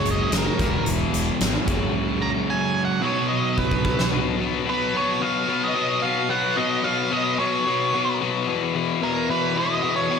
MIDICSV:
0, 0, Header, 1, 6, 480
1, 0, Start_track
1, 0, Tempo, 543478
1, 1726, Time_signature, 4, 2, 24, 8
1, 9003, End_track
2, 0, Start_track
2, 0, Title_t, "Lead electric guitar"
2, 0, Program_c, 0, 29
2, 99, Note_on_c, 0, 75, 86
2, 299, Note_off_c, 0, 75, 0
2, 334, Note_on_c, 0, 70, 79
2, 758, Note_off_c, 0, 70, 0
2, 1963, Note_on_c, 0, 82, 97
2, 2028, Note_off_c, 0, 82, 0
2, 2209, Note_on_c, 0, 80, 110
2, 2511, Note_off_c, 0, 80, 0
2, 2515, Note_on_c, 0, 78, 93
2, 2668, Note_on_c, 0, 73, 82
2, 2685, Note_off_c, 0, 78, 0
2, 2895, Note_off_c, 0, 73, 0
2, 2898, Note_on_c, 0, 75, 88
2, 3158, Note_on_c, 0, 71, 74
2, 3159, Note_off_c, 0, 75, 0
2, 3608, Note_off_c, 0, 71, 0
2, 4148, Note_on_c, 0, 71, 94
2, 4384, Note_off_c, 0, 71, 0
2, 4389, Note_on_c, 0, 73, 95
2, 4607, Note_on_c, 0, 77, 95
2, 4624, Note_off_c, 0, 73, 0
2, 4977, Note_off_c, 0, 77, 0
2, 4979, Note_on_c, 0, 75, 102
2, 5308, Note_off_c, 0, 75, 0
2, 5322, Note_on_c, 0, 77, 104
2, 5565, Note_off_c, 0, 77, 0
2, 5568, Note_on_c, 0, 78, 108
2, 5803, Note_on_c, 0, 75, 109
2, 5815, Note_off_c, 0, 78, 0
2, 6041, Note_on_c, 0, 77, 118
2, 6052, Note_off_c, 0, 75, 0
2, 6291, Note_off_c, 0, 77, 0
2, 6291, Note_on_c, 0, 75, 90
2, 6525, Note_off_c, 0, 75, 0
2, 6529, Note_on_c, 0, 73, 92
2, 7213, Note_off_c, 0, 73, 0
2, 7980, Note_on_c, 0, 70, 94
2, 8215, Note_off_c, 0, 70, 0
2, 8219, Note_on_c, 0, 71, 88
2, 8457, Note_on_c, 0, 75, 99
2, 8460, Note_off_c, 0, 71, 0
2, 8793, Note_off_c, 0, 75, 0
2, 8797, Note_on_c, 0, 73, 95
2, 9003, Note_off_c, 0, 73, 0
2, 9003, End_track
3, 0, Start_track
3, 0, Title_t, "Distorted electric guitar"
3, 0, Program_c, 1, 30
3, 0, Note_on_c, 1, 54, 88
3, 0, Note_on_c, 1, 56, 108
3, 0, Note_on_c, 1, 61, 102
3, 0, Note_on_c, 1, 66, 96
3, 509, Note_off_c, 1, 54, 0
3, 515, Note_off_c, 1, 56, 0
3, 517, Note_on_c, 1, 52, 85
3, 520, Note_off_c, 1, 61, 0
3, 524, Note_off_c, 1, 66, 0
3, 525, Note_on_c, 1, 56, 88
3, 534, Note_on_c, 1, 59, 96
3, 541, Note_on_c, 1, 64, 92
3, 1466, Note_off_c, 1, 52, 0
3, 1470, Note_off_c, 1, 56, 0
3, 1475, Note_off_c, 1, 59, 0
3, 1475, Note_on_c, 1, 54, 95
3, 1478, Note_off_c, 1, 64, 0
3, 1484, Note_on_c, 1, 56, 82
3, 1490, Note_on_c, 1, 61, 92
3, 1497, Note_on_c, 1, 66, 93
3, 2665, Note_off_c, 1, 54, 0
3, 2669, Note_off_c, 1, 56, 0
3, 2670, Note_on_c, 1, 47, 84
3, 2672, Note_off_c, 1, 61, 0
3, 2676, Note_off_c, 1, 66, 0
3, 2677, Note_on_c, 1, 54, 85
3, 2684, Note_on_c, 1, 59, 92
3, 2690, Note_on_c, 1, 63, 101
3, 2694, Note_on_c, 1, 66, 94
3, 3623, Note_off_c, 1, 47, 0
3, 3626, Note_off_c, 1, 54, 0
3, 3630, Note_off_c, 1, 59, 0
3, 3633, Note_off_c, 1, 63, 0
3, 3635, Note_off_c, 1, 66, 0
3, 9003, End_track
4, 0, Start_track
4, 0, Title_t, "Overdriven electric guitar"
4, 0, Program_c, 2, 29
4, 0, Note_on_c, 2, 42, 85
4, 0, Note_on_c, 2, 49, 93
4, 0, Note_on_c, 2, 54, 83
4, 510, Note_off_c, 2, 42, 0
4, 517, Note_off_c, 2, 49, 0
4, 521, Note_on_c, 2, 40, 99
4, 523, Note_off_c, 2, 54, 0
4, 540, Note_on_c, 2, 47, 102
4, 549, Note_on_c, 2, 52, 117
4, 1468, Note_off_c, 2, 40, 0
4, 1477, Note_on_c, 2, 42, 86
4, 1478, Note_off_c, 2, 47, 0
4, 1482, Note_off_c, 2, 52, 0
4, 1491, Note_on_c, 2, 49, 100
4, 1501, Note_on_c, 2, 54, 97
4, 2660, Note_off_c, 2, 49, 0
4, 2663, Note_on_c, 2, 47, 79
4, 2665, Note_off_c, 2, 54, 0
4, 2666, Note_off_c, 2, 42, 0
4, 2676, Note_on_c, 2, 54, 91
4, 2689, Note_on_c, 2, 59, 88
4, 3620, Note_off_c, 2, 47, 0
4, 3626, Note_off_c, 2, 54, 0
4, 3633, Note_off_c, 2, 59, 0
4, 3636, Note_on_c, 2, 47, 95
4, 3641, Note_on_c, 2, 54, 97
4, 3644, Note_on_c, 2, 59, 106
4, 3875, Note_off_c, 2, 47, 0
4, 3878, Note_off_c, 2, 54, 0
4, 3879, Note_on_c, 2, 47, 99
4, 3881, Note_on_c, 2, 54, 92
4, 3886, Note_off_c, 2, 59, 0
4, 3890, Note_on_c, 2, 59, 112
4, 4107, Note_off_c, 2, 47, 0
4, 4110, Note_on_c, 2, 47, 90
4, 4113, Note_off_c, 2, 54, 0
4, 4116, Note_on_c, 2, 54, 92
4, 4118, Note_off_c, 2, 59, 0
4, 4121, Note_on_c, 2, 59, 89
4, 4356, Note_off_c, 2, 47, 0
4, 4360, Note_off_c, 2, 54, 0
4, 4360, Note_on_c, 2, 47, 87
4, 4363, Note_on_c, 2, 54, 99
4, 4367, Note_off_c, 2, 59, 0
4, 4370, Note_on_c, 2, 59, 103
4, 4587, Note_off_c, 2, 47, 0
4, 4595, Note_off_c, 2, 54, 0
4, 4598, Note_on_c, 2, 47, 91
4, 4605, Note_off_c, 2, 59, 0
4, 4606, Note_on_c, 2, 54, 91
4, 4609, Note_on_c, 2, 59, 98
4, 4826, Note_off_c, 2, 47, 0
4, 4831, Note_off_c, 2, 54, 0
4, 4836, Note_on_c, 2, 47, 80
4, 4842, Note_on_c, 2, 54, 96
4, 4843, Note_off_c, 2, 59, 0
4, 4846, Note_on_c, 2, 59, 103
4, 5064, Note_off_c, 2, 47, 0
4, 5067, Note_off_c, 2, 54, 0
4, 5074, Note_on_c, 2, 47, 96
4, 5077, Note_on_c, 2, 54, 94
4, 5079, Note_off_c, 2, 59, 0
4, 5083, Note_on_c, 2, 59, 107
4, 5305, Note_off_c, 2, 47, 0
4, 5313, Note_off_c, 2, 54, 0
4, 5315, Note_on_c, 2, 47, 83
4, 5323, Note_off_c, 2, 59, 0
4, 5323, Note_on_c, 2, 54, 94
4, 5327, Note_on_c, 2, 59, 92
4, 5546, Note_off_c, 2, 47, 0
4, 5550, Note_off_c, 2, 54, 0
4, 5557, Note_on_c, 2, 47, 87
4, 5560, Note_on_c, 2, 54, 103
4, 5563, Note_off_c, 2, 59, 0
4, 5566, Note_on_c, 2, 59, 117
4, 5785, Note_off_c, 2, 47, 0
4, 5791, Note_off_c, 2, 54, 0
4, 5796, Note_on_c, 2, 47, 98
4, 5801, Note_on_c, 2, 54, 113
4, 5806, Note_off_c, 2, 59, 0
4, 5810, Note_on_c, 2, 59, 101
4, 6020, Note_off_c, 2, 47, 0
4, 6027, Note_off_c, 2, 54, 0
4, 6031, Note_on_c, 2, 47, 86
4, 6037, Note_off_c, 2, 59, 0
4, 6038, Note_on_c, 2, 54, 107
4, 6041, Note_on_c, 2, 59, 108
4, 6268, Note_off_c, 2, 47, 0
4, 6274, Note_off_c, 2, 54, 0
4, 6278, Note_on_c, 2, 47, 94
4, 6283, Note_off_c, 2, 59, 0
4, 6284, Note_on_c, 2, 54, 93
4, 6286, Note_on_c, 2, 59, 107
4, 6511, Note_off_c, 2, 47, 0
4, 6517, Note_off_c, 2, 54, 0
4, 6521, Note_on_c, 2, 47, 89
4, 6528, Note_on_c, 2, 54, 94
4, 6532, Note_off_c, 2, 59, 0
4, 6536, Note_on_c, 2, 59, 87
4, 6752, Note_off_c, 2, 47, 0
4, 6757, Note_off_c, 2, 54, 0
4, 6763, Note_on_c, 2, 47, 90
4, 6768, Note_on_c, 2, 54, 88
4, 6772, Note_off_c, 2, 59, 0
4, 6775, Note_on_c, 2, 59, 95
4, 6995, Note_off_c, 2, 47, 0
4, 7002, Note_off_c, 2, 54, 0
4, 7005, Note_on_c, 2, 47, 98
4, 7011, Note_off_c, 2, 59, 0
4, 7013, Note_on_c, 2, 54, 108
4, 7015, Note_on_c, 2, 59, 95
4, 7241, Note_off_c, 2, 47, 0
4, 7247, Note_off_c, 2, 54, 0
4, 7252, Note_on_c, 2, 47, 96
4, 7254, Note_off_c, 2, 59, 0
4, 7257, Note_on_c, 2, 59, 112
4, 7258, Note_on_c, 2, 54, 107
4, 7472, Note_off_c, 2, 47, 0
4, 7478, Note_off_c, 2, 54, 0
4, 7478, Note_on_c, 2, 40, 101
4, 7483, Note_on_c, 2, 47, 95
4, 7488, Note_on_c, 2, 52, 110
4, 7714, Note_off_c, 2, 47, 0
4, 7718, Note_off_c, 2, 40, 0
4, 7722, Note_on_c, 2, 40, 90
4, 7724, Note_on_c, 2, 47, 103
4, 7728, Note_off_c, 2, 52, 0
4, 7732, Note_on_c, 2, 52, 111
4, 7959, Note_off_c, 2, 40, 0
4, 7959, Note_off_c, 2, 47, 0
4, 7963, Note_on_c, 2, 40, 92
4, 7966, Note_off_c, 2, 52, 0
4, 7969, Note_on_c, 2, 52, 119
4, 7970, Note_on_c, 2, 47, 104
4, 8199, Note_off_c, 2, 47, 0
4, 8200, Note_off_c, 2, 40, 0
4, 8203, Note_on_c, 2, 40, 85
4, 8210, Note_on_c, 2, 47, 105
4, 8212, Note_off_c, 2, 52, 0
4, 8215, Note_on_c, 2, 52, 109
4, 8423, Note_off_c, 2, 40, 0
4, 8424, Note_off_c, 2, 47, 0
4, 8431, Note_off_c, 2, 52, 0
4, 8433, Note_on_c, 2, 40, 88
4, 8435, Note_on_c, 2, 47, 87
4, 8441, Note_on_c, 2, 52, 96
4, 8668, Note_off_c, 2, 40, 0
4, 8673, Note_off_c, 2, 47, 0
4, 8674, Note_off_c, 2, 52, 0
4, 8679, Note_on_c, 2, 40, 86
4, 8684, Note_on_c, 2, 47, 89
4, 8685, Note_on_c, 2, 52, 93
4, 8909, Note_off_c, 2, 40, 0
4, 8918, Note_off_c, 2, 52, 0
4, 8919, Note_off_c, 2, 47, 0
4, 8919, Note_on_c, 2, 40, 98
4, 8929, Note_on_c, 2, 52, 110
4, 8930, Note_on_c, 2, 47, 100
4, 9003, Note_off_c, 2, 40, 0
4, 9003, Note_off_c, 2, 47, 0
4, 9003, Note_off_c, 2, 52, 0
4, 9003, Note_off_c, 2, 59, 0
4, 9003, End_track
5, 0, Start_track
5, 0, Title_t, "Fingered electric bass"
5, 0, Program_c, 3, 33
5, 61, Note_on_c, 3, 30, 80
5, 202, Note_off_c, 3, 30, 0
5, 284, Note_on_c, 3, 30, 95
5, 430, Note_off_c, 3, 30, 0
5, 524, Note_on_c, 3, 28, 92
5, 670, Note_off_c, 3, 28, 0
5, 766, Note_on_c, 3, 28, 89
5, 911, Note_off_c, 3, 28, 0
5, 994, Note_on_c, 3, 28, 90
5, 1143, Note_off_c, 3, 28, 0
5, 1243, Note_on_c, 3, 32, 78
5, 1388, Note_off_c, 3, 32, 0
5, 1481, Note_on_c, 3, 30, 85
5, 1627, Note_off_c, 3, 30, 0
5, 9003, End_track
6, 0, Start_track
6, 0, Title_t, "Drums"
6, 47, Note_on_c, 9, 42, 78
6, 135, Note_off_c, 9, 42, 0
6, 282, Note_on_c, 9, 42, 98
6, 291, Note_on_c, 9, 38, 110
6, 371, Note_off_c, 9, 42, 0
6, 379, Note_off_c, 9, 38, 0
6, 523, Note_on_c, 9, 42, 77
6, 525, Note_on_c, 9, 36, 100
6, 611, Note_off_c, 9, 42, 0
6, 613, Note_off_c, 9, 36, 0
6, 759, Note_on_c, 9, 42, 89
6, 848, Note_off_c, 9, 42, 0
6, 1005, Note_on_c, 9, 42, 83
6, 1093, Note_off_c, 9, 42, 0
6, 1241, Note_on_c, 9, 42, 99
6, 1250, Note_on_c, 9, 38, 104
6, 1329, Note_off_c, 9, 42, 0
6, 1338, Note_off_c, 9, 38, 0
6, 1480, Note_on_c, 9, 42, 67
6, 1482, Note_on_c, 9, 36, 108
6, 1569, Note_off_c, 9, 42, 0
6, 1571, Note_off_c, 9, 36, 0
6, 3159, Note_on_c, 9, 36, 60
6, 3248, Note_off_c, 9, 36, 0
6, 3280, Note_on_c, 9, 36, 66
6, 3369, Note_off_c, 9, 36, 0
6, 3398, Note_on_c, 9, 36, 83
6, 3487, Note_off_c, 9, 36, 0
6, 3525, Note_on_c, 9, 38, 75
6, 3613, Note_off_c, 9, 38, 0
6, 9003, End_track
0, 0, End_of_file